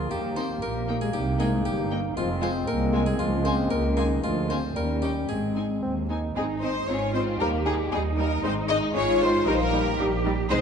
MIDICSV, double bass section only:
0, 0, Header, 1, 2, 480
1, 0, Start_track
1, 0, Key_signature, -4, "major"
1, 0, Tempo, 515464
1, 99, Time_signature, 2, 2, 24, 8
1, 3459, Tempo, 530973
1, 5859, Tempo, 516796
1, 9800, End_track
2, 0, Start_track
2, 0, Title_t, "Double bass section"
2, 0, Program_c, 0, 48
2, 103, Note_on_c, 0, 39, 57
2, 500, Note_off_c, 0, 39, 0
2, 585, Note_on_c, 0, 34, 57
2, 981, Note_off_c, 0, 34, 0
2, 1063, Note_on_c, 0, 36, 62
2, 1460, Note_off_c, 0, 36, 0
2, 1542, Note_on_c, 0, 31, 66
2, 1939, Note_off_c, 0, 31, 0
2, 2020, Note_on_c, 0, 29, 68
2, 2417, Note_off_c, 0, 29, 0
2, 2497, Note_on_c, 0, 36, 67
2, 2896, Note_off_c, 0, 36, 0
2, 2974, Note_on_c, 0, 37, 68
2, 3377, Note_off_c, 0, 37, 0
2, 3459, Note_on_c, 0, 37, 68
2, 3851, Note_off_c, 0, 37, 0
2, 3931, Note_on_c, 0, 38, 66
2, 4327, Note_off_c, 0, 38, 0
2, 4405, Note_on_c, 0, 39, 57
2, 4807, Note_off_c, 0, 39, 0
2, 4887, Note_on_c, 0, 32, 47
2, 5292, Note_off_c, 0, 32, 0
2, 5371, Note_on_c, 0, 39, 46
2, 5777, Note_off_c, 0, 39, 0
2, 5855, Note_on_c, 0, 32, 57
2, 6283, Note_off_c, 0, 32, 0
2, 6339, Note_on_c, 0, 32, 58
2, 6765, Note_off_c, 0, 32, 0
2, 6822, Note_on_c, 0, 39, 64
2, 7245, Note_off_c, 0, 39, 0
2, 7301, Note_on_c, 0, 39, 65
2, 7726, Note_off_c, 0, 39, 0
2, 7781, Note_on_c, 0, 32, 71
2, 8205, Note_off_c, 0, 32, 0
2, 8265, Note_on_c, 0, 32, 71
2, 8687, Note_off_c, 0, 32, 0
2, 8745, Note_on_c, 0, 34, 73
2, 9167, Note_off_c, 0, 34, 0
2, 9224, Note_on_c, 0, 34, 75
2, 9644, Note_off_c, 0, 34, 0
2, 9699, Note_on_c, 0, 36, 76
2, 9773, Note_off_c, 0, 36, 0
2, 9800, End_track
0, 0, End_of_file